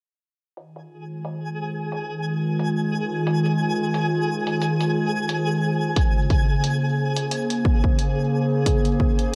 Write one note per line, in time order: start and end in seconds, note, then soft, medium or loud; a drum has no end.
0.57 5.97 D#3 medium
0.57 9.35 G#4 medium
0.57 9.35 G#5 medium
0.57 closed hi-hat medium
0.70 8.14 F4 medium
0.76 closed hi-hat soft
0.94 5.97 G#3 medium
0.94 9.35 C5 medium
1.25 closed hi-hat medium
1.92 closed hi-hat medium
2.59 closed hi-hat medium
3.27 closed hi-hat medium
3.46 closed hi-hat soft
3.94 closed hi-hat medium
4.47 closed hi-hat medium
4.62 closed hi-hat medium
4.81 closed hi-hat medium
5.29 closed hi-hat medium
5.96 9.35 C#3 medium
5.96 kick loud
5.96 closed hi-hat medium
6.19 9.35 A#3 medium
6.19 9.35 G#4 medium
6.30 kick loud
6.30 closed hi-hat soft
6.64 closed hi-hat medium
7.16 closed hi-hat medium
7.31 closed hi-hat medium
7.50 closed hi-hat medium
7.65 kick loud
7.84 kick loud
7.99 closed hi-hat medium
8.66 kick loud
8.66 closed hi-hat medium
8.85 closed hi-hat soft
9.00 kick loud
9.19 closed hi-hat soft